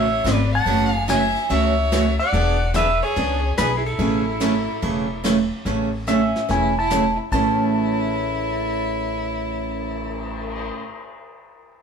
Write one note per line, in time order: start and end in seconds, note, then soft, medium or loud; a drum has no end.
0.00 0.19 A1 medium
0.00 0.33 C#5 medium
0.00 0.34 E5 medium
0.24 0.60 G#1 medium
0.24 0.37 C#3 medium
0.24 0.37 E3 medium
0.24 0.37 A3 medium
0.24 0.37 C#4 medium
0.24 0.37 F#4 medium
0.24 snare medium
0.24 hi-hat pedal medium
0.24 ride medium
0.33 0.49 B4 medium
0.33 0.50 D5 medium
0.52 0.89 F#5 medium
0.52 0.95 A5 loud
0.66 1.33 F#1 medium
0.66 0.89 C#3 medium
0.66 0.89 E3 medium
0.66 0.89 A3 medium
0.66 0.90 C#4 medium
0.66 0.90 F#4 medium
0.66 ride medium
0.89 1.04 F5 medium
0.95 1.09 G#5 loud
1.08 1.20 C#3 medium
1.08 1.20 E3 medium
1.08 1.20 A3 medium
1.08 1.21 C#4 medium
1.08 1.21 F#4 medium
1.08 1.48 E5 medium
1.08 1.52 G#5 loud
1.08 snare medium
1.08 hi-hat pedal medium
1.08 ride medium
1.36 ride soft
1.50 2.17 C#2 medium
1.50 1.72 C#3 medium
1.50 1.73 E3 medium
1.50 1.73 A3 medium
1.50 1.73 C#4 medium
1.50 1.73 F#4 medium
1.50 2.16 C#5 medium
1.50 2.16 E5 loud
1.50 ride medium
1.92 2.04 C#3 medium
1.92 2.04 E3 medium
1.92 2.04 A3 medium
1.92 2.04 C#4 medium
1.92 2.04 F#4 medium
1.92 snare medium
1.92 hi-hat pedal medium
1.92 ride medium
2.19 2.71 D5 medium
2.19 2.76 F#5 loud
2.19 ride medium
2.33 2.99 E1 medium
2.33 2.56 E3 medium
2.33 2.56 B3 medium
2.33 2.56 D4 medium
2.33 2.56 G#4 medium
2.33 ride medium
2.74 2.86 E3 medium
2.74 2.87 B3 medium
2.74 2.87 D4 medium
2.74 2.87 G#4 medium
2.74 3.01 B4 medium
2.74 3.01 E5 loud
2.74 snare medium
2.74 hi-hat pedal medium
2.74 ride medium
3.02 3.55 G#4 medium
3.02 3.58 C#5 medium
3.02 ride soft
3.16 3.52 C#2 medium
3.16 3.39 E3 medium
3.16 3.39 B3 medium
3.16 3.39 D4 medium
3.16 3.40 G#4 medium
3.16 ride medium
3.58 3.93 B1 medium
3.58 3.70 E3 medium
3.58 3.70 B3 medium
3.58 3.70 D4 medium
3.58 3.70 G#4 medium
3.58 3.76 G#4 medium
3.58 3.75 B4 medium
3.58 snare medium
3.58 hi-hat pedal medium
3.58 ride medium
3.77 3.85 E4 medium
3.77 3.86 G#4 medium
3.86 5.21 E4 medium
3.86 5.21 A4 medium
3.86 ride soft
3.99 4.66 A1 medium
3.99 4.22 C#3 medium
3.99 4.22 E3 medium
3.99 4.22 A3 medium
3.99 4.22 C#4 medium
3.99 4.22 G#4 medium
3.99 ride medium
4.40 4.53 C#3 medium
4.40 4.53 E3 medium
4.40 4.53 A3 medium
4.40 4.53 C#4 medium
4.40 4.53 G#4 medium
4.40 snare medium
4.40 hi-hat pedal medium
4.40 ride medium
4.82 5.49 E1 medium
4.82 5.05 C#3 medium
4.82 5.05 E3 medium
4.82 5.05 A3 medium
4.82 5.06 C#4 medium
4.82 5.06 G#4 medium
4.82 ride medium
5.24 5.36 C#3 medium
5.24 5.36 E3 medium
5.24 5.36 A3 medium
5.24 5.37 C#4 medium
5.24 5.37 G#4 medium
5.24 snare medium
5.24 hi-hat pedal medium
5.24 ride medium
5.65 6.32 A1 medium
5.65 5.89 C#3 medium
5.65 5.89 E3 medium
5.65 5.89 A3 medium
5.65 5.89 C#4 medium
5.65 5.89 G#4 medium
5.65 brush sweep soft
5.65 snare soft
6.07 6.19 C#3 medium
6.07 6.20 E3 medium
6.07 6.20 A3 medium
6.07 6.20 C#4 medium
6.07 6.47 C#4 medium
6.07 6.20 G#4 medium
6.07 6.51 E5 medium
6.07 snare medium
6.07 hi-hat pedal medium
6.36 snare soft
6.49 7.16 E1 medium
6.49 6.72 C#3 medium
6.49 6.72 E3 medium
6.49 6.72 A3 medium
6.49 6.72 C#4 medium
6.49 6.76 E4 medium
6.49 6.72 G#4 medium
6.49 6.78 G#5 medium
6.49 brush sweep medium
6.49 snare soft
6.79 7.17 E4 medium
6.79 7.17 A5 medium
6.90 7.03 C#3 medium
6.90 7.03 E3 medium
6.90 7.03 A3 medium
6.90 7.03 C#4 medium
6.90 7.03 G#4 medium
6.90 snare medium
6.90 hi-hat pedal medium
7.31 10.69 A1 medium
7.31 10.82 A2 medium
7.31 10.83 C#3 medium
7.31 10.84 E3 medium
7.31 10.84 A3 medium
7.31 10.84 C#4 medium
7.31 10.68 E4 medium
7.31 10.70 A5 medium
7.31 kick medium
7.31 crash medium
7.60 cymbal swell soft